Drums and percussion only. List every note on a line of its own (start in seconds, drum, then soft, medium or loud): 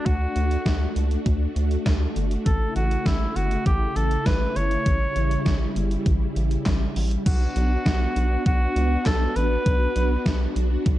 0.06 kick loud
0.06 closed hi-hat medium
0.36 closed hi-hat medium
0.51 closed hi-hat medium
0.66 kick loud
0.66 snare loud
0.66 closed hi-hat medium
0.96 closed hi-hat medium
1.11 closed hi-hat medium
1.26 kick loud
1.26 closed hi-hat medium
1.56 closed hi-hat medium
1.71 closed hi-hat soft
1.86 kick loud
1.86 snare loud
1.86 closed hi-hat medium
2.16 closed hi-hat medium
2.31 closed hi-hat medium
2.46 kick loud
2.46 closed hi-hat medium
2.76 closed hi-hat medium
2.91 closed hi-hat medium
3.06 kick loud
3.06 snare loud
3.06 closed hi-hat medium
3.36 closed hi-hat medium
3.51 closed hi-hat medium
3.66 kick loud
3.66 closed hi-hat medium
3.96 closed hi-hat medium
4.11 closed hi-hat medium
4.26 kick loud
4.26 snare loud
4.26 closed hi-hat medium
4.56 closed hi-hat medium
4.71 closed hi-hat medium
4.86 kick loud
4.86 closed hi-hat medium
5.16 closed hi-hat medium
5.31 closed hi-hat medium
5.46 kick loud
5.46 snare loud
5.46 closed hi-hat medium
5.76 closed hi-hat medium
5.91 closed hi-hat medium
6.06 kick loud
6.06 closed hi-hat medium
6.36 closed hi-hat medium
6.51 closed hi-hat medium
6.66 kick loud
6.66 snare loud
6.66 clap medium
6.66 closed hi-hat medium
6.96 open hi-hat medium
7.11 closed hi-hat medium
7.26 kick loud
7.26 closed hi-hat medium
7.26 crash loud
7.56 closed hi-hat medium
7.86 kick loud
7.86 snare loud
7.86 closed hi-hat medium
8.16 closed hi-hat medium
8.46 kick loud
8.46 closed hi-hat medium
8.76 closed hi-hat medium
9.06 kick loud
9.06 snare loud
9.06 clap loud
9.06 closed hi-hat medium
9.36 closed hi-hat medium
9.66 kick loud
9.66 closed hi-hat medium
9.96 closed hi-hat medium
10.26 kick loud
10.26 snare loud
10.26 closed hi-hat medium
10.56 closed hi-hat medium
10.86 kick loud
10.86 closed hi-hat medium